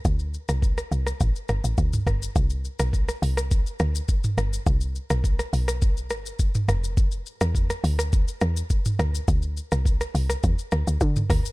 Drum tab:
HH |----------------|------o---------|------o---------|------o---------|
SH |xxxxxxxxxxxxxxxx|xxxxxxxxxxxxxxxx|xxxxxxxxxxxxxxxx|xxxxxxxxxxxxxxxx|
SD |---r-r-r--r---r-|---r-r-r--r---r-|---r-r-r--r---r-|---r-r-r--r---r-|
T2 |-------------oo-|-------------o--|-------------o--|-------------o--|
BD |o---o---o---o-o-|o---o---o---o---|o---o---o---o---|o---o---o---o---|

HH |------o-------o-|
SH |xxxxxxxxxxxxxxxx|
SD |---r-r-r--r---r-|
T2 |-------------oo-|
BD |o---o---o---o-o-|